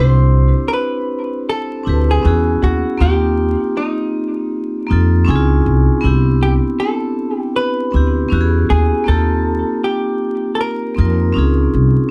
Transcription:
Already playing: upright bass C2, vibraphone C4 D4 E4 G4, hollow-body jazz guitar C5
0.00 vibraphone C5
0.68 hollow-body jazz guitar A#4
0.73 hollow-body jazz guitar B4
1.49 hollow-body jazz guitar A4
1.83 upright bass D2, vibraphone C4 D4 E4
1.88 vibraphone G4 B4
2.11 hollow-body jazz guitar G#4
2.21 upright bass E2, vibraphone B3 C#4 E4
2.26 vibraphone F#4 G#4
2.63 upright bass D#2, hollow-body jazz guitar F#4
2.98 upright bass D#2, vibraphone A#3 C4 D#4, hollow-body jazz guitar G4
3.02 vibraphone F4 G4
3.77 hollow-body jazz guitar D#4
4.87 upright bass F2, vibraphone A#3 C4 D#4
4.91 vibraphone F4 A4
5.25 upright bass C#2, vibraphone C4 C#4 D#4 G#5
5.29 vibraphone E4 G#4
5.36 vibraphone F4
5.66 upright bass C2
6.01 upright bass C2, vibraphone B3 C4 D4
6.05 vibraphone E4 G4
6.43 hollow-body jazz guitar G4
6.80 hollow-body jazz guitar A4
7.37 hollow-body jazz guitar G4
7.56 hollow-body jazz guitar B4
7.91 upright bass D2, vibraphone B3 C4 D4
7.95 vibraphone E4 G4
8.29 upright bass E2, vibraphone B3 C#4 E4
8.33 vibraphone F#4 G4
8.41 vibraphone G#4
8.70 upright bass D#2, hollow-body jazz guitar G#4
9.04 vibraphone A#3 C4 D#4, hollow-body jazz guitar A4
9.08 upright bass D#2, vibraphone F4 G4
9.84 hollow-body jazz guitar G4
10.55 hollow-body jazz guitar A4
10.61 hollow-body jazz guitar A#4
10.94 upright bass F2, vibraphone A#3 C4 D#4
10.99 vibraphone F4 A#4
11.32 upright bass C#2, vibraphone C4 C#4 D#4
11.37 vibraphone F4 G#4
11.74 upright bass C2

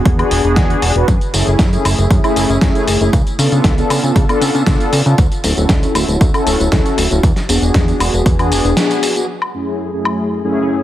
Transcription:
Already playing: analog polysynth B3 D4 F#4 G#4
0.05 analog synth bass E2, kick, closed hi-hat
0.18 analog polysynth B3 D4 F#4 G#4, closed hi-hat, high woodblock
0.31 analog synth bass E1, open hi-hat
0.43 analog synth bass E1, analog polysynth B3 D4 F#4 G#4
0.56 analog synth bass E2, kick, snare, closed hi-hat
0.70 closed hi-hat
0.82 analog synth bass E1, open hi-hat
0.95 analog synth bass E1, analog polysynth B3 D4 F#4 B4, closed hi-hat
1.08 analog synth bass F#2, kick, closed hi-hat, tambourine
1.21 closed hi-hat, tambourine
1.33 analog synth bass F#1, analog polysynth A3 C#4 E4 G#4, open hi-hat, tambourine
1.47 analog synth bass F#1, closed hi-hat, tambourine
1.59 analog synth bass F#2, kick, snare, closed hi-hat, tambourine
1.72 analog polysynth A3 C#4 E4 G#4, closed hi-hat, tambourine
1.85 analog synth bass F#1, open hi-hat, tambourine, high woodblock
1.98 analog synth bass F#1, closed hi-hat, tambourine
2.11 analog synth bass F#2, kick, closed hi-hat, tambourine
2.23 analog polysynth A3 C#4 E4 G#4, closed hi-hat, tambourine, high woodblock
2.36 analog synth bass F#1, open hi-hat, tambourine
2.49 analog synth bass F#1, closed hi-hat, tambourine
2.61 analog synth bass F#2, analog polysynth A3 C#4 E4 G#4, kick, snare, closed hi-hat, tambourine
2.75 closed hi-hat, tambourine
2.87 analog synth bass F#1, open hi-hat, tambourine
3.00 analog synth bass F#1, analog polysynth A3 C#4 E4 G#4, closed hi-hat, tambourine
3.13 analog synth bass C#2, kick, closed hi-hat, tambourine
3.27 closed hi-hat, tambourine
3.38 analog synth bass C#3, analog polysynth B3 D4 F4 A4, open hi-hat, tambourine
3.52 analog synth bass C#3, closed hi-hat, tambourine
3.64 analog synth bass C#2, kick, snare, closed hi-hat, tambourine
3.77 analog polysynth B3 D4 F4 A4, closed hi-hat, tambourine
3.90 analog synth bass C#3, open hi-hat, tambourine, high woodblock
4.03 analog synth bass C#3, closed hi-hat, tambourine
4.16 analog synth bass C#2, kick, closed hi-hat, tambourine
4.29 analog polysynth B3 D4 F4 A4, closed hi-hat, tambourine, high woodblock
4.41 analog synth bass C#3, open hi-hat, tambourine
4.55 analog synth bass C#3, closed hi-hat, tambourine
4.66 analog synth bass C#2, analog polysynth B3 D4 F4 A4, kick, snare, closed hi-hat, tambourine
4.80 closed hi-hat, tambourine
4.92 analog synth bass C#3, open hi-hat, tambourine
5.05 analog synth bass C#3, analog polysynth B3 D4 F4 A4, closed hi-hat, tambourine
5.18 analog synth bass D2, kick, closed hi-hat, tambourine
5.32 closed hi-hat, tambourine
5.43 analog synth bass D1, analog polysynth C#4 E4 F#4 A4, open hi-hat, tambourine
5.57 analog synth bass D1, closed hi-hat, tambourine
5.69 analog synth bass D2, kick, snare, closed hi-hat, tambourine
5.82 analog polysynth C#4 E4 F#4 A4, closed hi-hat, tambourine
5.95 analog synth bass D1, open hi-hat, tambourine, high woodblock
6.08 analog synth bass D1, closed hi-hat, tambourine
6.21 analog synth bass D2, kick, closed hi-hat, tambourine
6.33 analog polysynth C#4 E4 F#4 A4, closed hi-hat, tambourine, high woodblock
6.46 analog synth bass D1, open hi-hat, tambourine
6.60 analog synth bass D1, closed hi-hat, tambourine
6.71 analog synth bass D2, analog polysynth C#4 E4 F#4 A4, kick, snare, closed hi-hat, tambourine
6.86 closed hi-hat, tambourine
6.98 analog synth bass D1, open hi-hat, tambourine
7.10 analog synth bass D1, analog polysynth C#4 E4 F#4 A4, closed hi-hat, tambourine
7.23 analog synth bass E2, kick, closed hi-hat, tambourine
7.36 snare, closed hi-hat, tambourine
7.48 analog synth bass E1, analog polysynth B3 D4 F#4 G#4, open hi-hat, tambourine
7.62 analog synth bass E1, closed hi-hat, tambourine
7.74 analog synth bass E2, kick, snare, closed hi-hat, tambourine
7.87 analog polysynth B3 D4 F#4 G#4, closed hi-hat, tambourine
8.00 analog synth bass E1, open hi-hat, tambourine, high woodblock
8.13 analog synth bass E1, closed hi-hat, tambourine
8.26 analog synth bass E2, kick, closed hi-hat, tambourine
8.39 analog polysynth B3 D4 F#4 G#4, closed hi-hat, tambourine, high woodblock
8.51 analog synth bass E1, open hi-hat, tambourine
8.65 analog synth bass E1, closed hi-hat, tambourine
8.77 analog polysynth B3 D4 F#4 G#4, snare, closed hi-hat, tambourine
8.91 closed hi-hat, tambourine
9.03 open hi-hat, tambourine
9.15 analog polysynth B3 D4 F#4 G#4, closed hi-hat, tambourine
9.42 high woodblock
9.54 analog polysynth F#2 A3 C#4 E4 G#4
9.93 analog polysynth F#2 A3 C#4 E4 G#4
10.05 high woodblock
10.44 analog polysynth F#2 A3 C#4 E4 G#4

